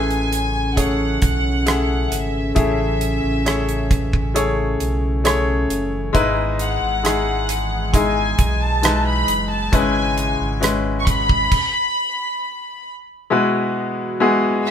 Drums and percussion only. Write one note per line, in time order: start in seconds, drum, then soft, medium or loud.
0.11 closed hi-hat soft
0.32 closed hi-hat medium
0.77 kick medium
0.77 closed hi-hat medium
1.22 kick medium
1.22 closed hi-hat medium
1.67 cross-stick medium
1.67 closed hi-hat medium
2.12 closed hi-hat medium
2.56 kick medium
2.56 closed hi-hat medium
3.01 closed hi-hat medium
3.46 cross-stick medium
3.46 closed hi-hat medium
3.69 closed hi-hat soft
3.91 kick medium
3.91 closed hi-hat medium
4.13 kick medium
4.36 closed hi-hat medium
4.80 closed hi-hat medium
5.25 cross-stick medium
5.25 closed hi-hat medium
5.70 closed hi-hat medium
6.15 kick medium
6.15 closed hi-hat medium
6.59 closed hi-hat medium
7.05 cross-stick medium
7.05 closed hi-hat medium
7.49 closed hi-hat medium
7.94 kick medium
7.94 closed hi-hat medium
8.39 kick medium
8.39 closed hi-hat medium
8.83 cross-stick loud
8.83 closed hi-hat medium
9.28 closed hi-hat medium
9.73 kick medium
9.73 closed hi-hat medium
10.18 closed hi-hat medium
10.63 cross-stick medium
10.63 closed hi-hat medium
11.07 kick medium
11.07 closed hi-hat medium
11.29 kick medium
11.52 kick medium
11.52 crash medium